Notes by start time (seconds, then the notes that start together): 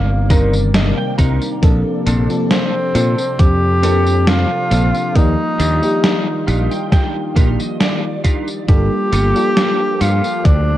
Already playing: G1 C3 D#3 G3 A#3 C4 D4 D#4 A#4 D5
0.30 D#3 G3 C4 D4 D#4 A#4 D5, kick, closed hi-hat, tambourine
0.53 tambourine
0.74 D#5, snare, closed hi-hat, tambourine
0.98 G5
1.18 C2 G3 C4 D4 D#4 A#4 A#5, kick, closed hi-hat, tambourine
1.42 tambourine
1.62 A#1 F3 A#3 C4 D4 A4, kick, closed hi-hat, tambourine
2.06 A#1 A#3 C4 D4 A4, closed hi-hat, tambourine
2.29 F3 A#3 C4 D4 A4, tambourine
2.51 C4, snare, closed hi-hat, tambourine
2.95 A#2 A#3 C4 D4 A4, closed hi-hat, tambourine
3.18 tambourine
3.39 F2 C4 G4, kick, closed hi-hat, tambourine
3.82 F3 A#3 C4 D4 A4, closed hi-hat, tambourine
4.06 tambourine
4.27 F4, snare, closed hi-hat, tambourine
4.71 A#1 F3 A#3 C4 D4 A4, closed hi-hat, tambourine
4.95 tambourine
5.15 D#2 D#3 F3 G3 A#3 D#4 F4 G4 D5, kick, closed hi-hat, tambourine
5.59 D#2 D4 D#4 F4 G4, closed hi-hat, tambourine
5.82 F3 A#3 D4 D#4 G4, tambourine
6.04 snare, closed hi-hat, tambourine
6.47 A#1 D4 D#4 F4 G4 F5, closed hi-hat, tambourine
6.71 G5, tambourine
6.92 G5, kick, snare, closed hi-hat, tambourine
7.35 A#1 D#3 F3 A#3 D4 D#4 F4 G4 F5, kick, closed hi-hat, tambourine
7.59 D#5, tambourine
7.80 D5, snare, closed hi-hat, tambourine
8.24 D4 D#4 F4 G4 D5, kick, closed hi-hat, tambourine
8.48 tambourine
8.68 G1 F3 G3 A#3 D4 F4 G4 A4, kick, closed hi-hat, tambourine
9.12 G1 A#3 F4 G4 A4, closed hi-hat, tambourine
9.35 G3 A#3 D4 F4 A4, tambourine
9.57 snare, closed hi-hat, tambourine
10.01 G2 A#3 F4 G4 A4, closed hi-hat, tambourine
10.24 tambourine
10.45 D2 D4, kick, closed hi-hat, tambourine